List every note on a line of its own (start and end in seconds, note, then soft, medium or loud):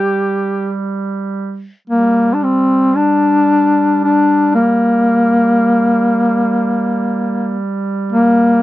0.00 1.71 G3 soft
0.00 0.79 G4 loud
1.88 8.62 G3 soft
1.88 2.35 A#3 medium
2.34 2.45 D4 medium
2.43 2.97 C4 medium
2.96 4.02 D4 medium
4.04 4.51 D4 medium
4.55 7.60 A#3 medium
8.12 8.62 A#3 medium